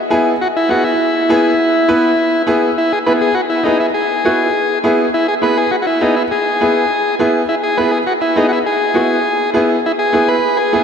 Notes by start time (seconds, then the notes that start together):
0.10 B3 E4 G#4 G#5
0.42 F#4
0.57 E4
0.69 B3 E4 F#4 G#4
0.84 E4
1.29 B3 E4 G#4
1.88 B3 E4 B4
2.47 B3 E4 G#4
2.78 E4
2.93 G#4
3.06 B3 E4 G#4 B4
3.21 G#4
3.35 F#4
3.50 E4
3.64 B3 D#4 E4 G#4
3.80 E4
3.94 G#4
4.25 B3 E4 F#4
4.84 B3 E4 G#4
5.14 E4
5.28 G#4
5.42 B3 E4 G#4 B4
5.58 G#4
5.71 F#4
5.82 F#4
5.87 E4
6.01 B3 D#4 E4 G#4
6.16 E4
6.31 G#4
6.61 B3 E4 G#4
7.19 B3 E4 G#4
7.49 E4
7.63 G#4
7.78 B3 E4 G#4 B4
7.92 G#4
8.07 F#4
8.21 E4
8.36 B3 D#4 E4 G#4
8.49 F#4
8.53 E4
8.66 G#4
8.94 B3 E4 F#4
9.54 B3 E4 G#4
9.86 E4
9.99 G#4
10.13 B3 E4 G#4
10.28 B4
10.57 G#4
10.73 B3 E4 G#4